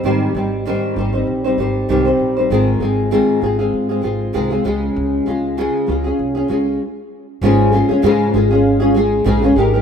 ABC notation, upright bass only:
X:1
M:4/4
L:1/16
Q:"Swing 16ths" 1/4=98
K:Dblyd
V:1 name="Upright bass" clef=bass
A,,,2 A,,,3 z A,,,2 B,,,2 A,,,2 C,,2 B,,,2 | A,,,2 A,,,3 z A,,,2 A,,2 A,,,2 C,,2 D,,2 | D,,2 D,,3 z D,,2 C,,2 D,,2 z4 | A,,,3 D,, A,,2 A,,,6 B,,,2 A,,,2 |]